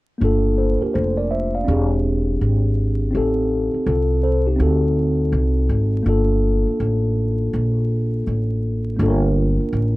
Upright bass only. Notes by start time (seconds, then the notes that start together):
0.21 G1
0.82 muted upright bass stroke
0.95 F1
1.68 E1
2.41 G#1
3.15 A1
3.74 muted upright bass stroke
3.86 C2
4.60 D2
5.32 C2
5.69 G#1
6.06 G1
6.67 muted upright bass stroke
6.80 A1
7.53 A#1
8.27 A1
8.99 G1
9.60 muted upright bass stroke
9.73 A1